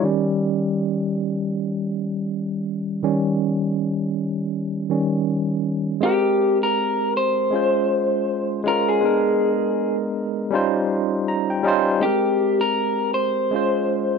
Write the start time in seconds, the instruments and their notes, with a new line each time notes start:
0.03 tine electric piano D#3 G3 C#4
3.03 tine electric piano D#3 G3 C#4
4.90 tine electric piano D#3 G3 C#4
6.01 tine electric piano G#3 C4 G4, clean electric guitar G4
6.05 tine electric piano A#4
6.63 clean electric guitar A#4
7.17 clean electric guitar C5
7.51 tine electric piano G#3 C#4 F4
7.56 tine electric piano C5
8.64 tine electric piano G#3 C#4 F4, clean electric guitar A#4
8.69 tine electric piano A#4
8.89 clean electric guitar G#4
9.01 tine electric piano G#3 B3 D4
9.06 tine electric piano A#4
10.50 tine electric piano G3 C#4 D#4 F4
10.55 tine electric piano C5
11.28 tine electric piano A#5
11.50 tine electric piano G5
11.63 tine electric piano G3 C#4 D#4 F4 D#5
11.68 tine electric piano C5
12.00 tine electric piano G#3 C4 G4, clean electric guitar G4
12.05 tine electric piano A#4
12.61 clean electric guitar A#4
13.14 clean electric guitar C5
13.51 tine electric piano G#3 C#4 F4
13.56 tine electric piano C5